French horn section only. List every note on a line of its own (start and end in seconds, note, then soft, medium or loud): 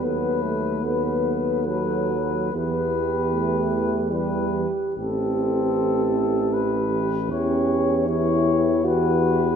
0.03 0.82 A4 soft
0.83 1.64 A4 soft
1.66 2.52 A4 soft
2.54 4.09 G4 soft
4.11 4.95 G4 soft
4.97 7.15 G4 soft
7.32 8.06 G4 soft
8.07 9.56 G4 soft